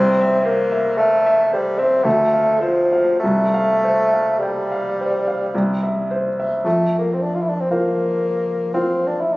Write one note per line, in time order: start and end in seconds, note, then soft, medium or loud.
0.00 2.02 C2 medium
0.00 0.46 C4 loud
0.21 0.62 E5 medium
0.44 0.99 A#3 loud
0.44 0.87 C5 medium
0.72 1.14 E5 medium
0.97 1.51 A3 loud
0.97 1.25 F5 medium
1.26 1.68 E5 medium
1.53 1.80 G3 medium
1.53 1.95 C5 medium
1.78 2.06 C4 medium
1.78 2.05 E5 medium
2.04 3.18 D2 medium
2.04 2.62 A3 loud
2.33 2.80 F5 soft
2.60 3.19 F3 medium
2.60 3.09 C5 medium
2.93 3.22 F5 soft
3.19 5.50 C2 medium
3.19 4.40 A3 medium
3.54 4.00 F5 medium
3.84 4.30 C5 medium
4.13 4.58 F5 soft
4.39 6.08 G3 medium
4.43 4.70 G5 soft
4.72 5.15 F5 soft
5.00 5.43 C5 soft
5.28 5.54 F5 soft
5.55 6.62 C2 medium
5.83 6.28 E5 soft
6.11 6.55 C5 soft
6.40 6.66 E5 soft
6.64 7.67 F2 medium
6.64 6.95 A3 medium
6.99 7.15 A#3 medium
7.13 7.24 C4 soft
7.22 7.36 D4 medium
7.35 7.43 F4 medium
7.41 7.51 E4 medium
7.49 7.62 D4 soft
7.60 7.71 C4 medium
7.71 8.71 A#3 medium
7.71 8.69 F4 soft
7.71 8.69 C5 soft
7.71 8.69 F5 soft
8.74 9.09 C4 medium
8.74 9.37 F4 soft
8.74 9.37 C5 soft
8.74 9.37 F5 soft
9.07 9.22 D4 medium
9.20 9.35 E4 medium
9.33 9.37 D4 soft